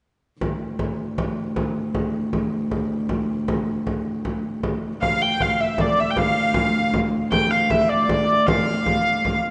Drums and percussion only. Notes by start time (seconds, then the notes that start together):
0.41 frame drum
0.60 frame drum
0.79 frame drum
0.98 frame drum
1.18 frame drum
1.56 frame drum
1.75 frame drum
1.95 frame drum
2.13 frame drum
2.33 frame drum
2.71 frame drum
2.90 frame drum
3.09 frame drum
3.29 frame drum
3.48 frame drum
3.87 frame drum
4.25 frame drum
4.44 frame drum
4.63 frame drum
4.84 frame drum
5.02 frame drum
5.21 frame drum
5.40 frame drum
5.78 frame drum
6.17 frame drum
6.36 frame drum
6.54 frame drum
6.94 frame drum
7.32 frame drum
7.52 frame drum
7.70 frame drum
8.09 frame drum
8.48 frame drum
8.86 frame drum
9.25 frame drum
9.44 frame drum